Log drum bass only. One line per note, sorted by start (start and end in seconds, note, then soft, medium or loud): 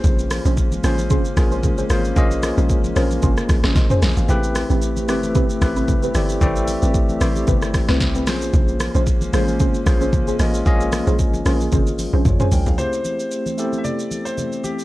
0.04 0.40 A#1 loud
0.45 0.78 A#1 loud
0.84 1.19 A1 loud
1.37 1.83 A#1 loud
1.90 2.13 G#1 loud
2.16 2.52 A#1 loud
2.58 2.91 A#1 loud
2.96 3.19 A#1 loud
3.23 3.35 G#1 loud
3.49 3.62 A#1 loud
3.64 3.74 A1 medium
3.76 3.88 A#1 loud
4.02 4.15 A#1 medium
4.17 4.27 G#1 medium
4.29 4.64 A1 loud
4.70 5.10 A1 medium
5.09 5.44 G1 medium
5.62 6.07 A1 loud
6.15 6.38 G1 medium
6.41 6.77 A1 loud
6.83 7.16 A1 loud
7.21 7.44 A1 loud
7.48 7.83 G1 loud
7.89 8.29 C2 medium
8.27 8.50 A#1 loud
8.54 8.89 A#1 loud
8.95 9.28 A#1 loud
9.33 9.69 A1 medium
9.86 10.32 A#1 loud
10.39 10.62 A1 loud
10.66 11.01 A#1 loud
11.07 11.40 A#1 loud
11.46 11.69 A#1 loud
11.72 12.08 G#1 loud
12.13 12.24 A#1 loud
12.25 12.38 G#1 loud
12.52 12.64 A#1 medium
12.67 12.77 A#1 medium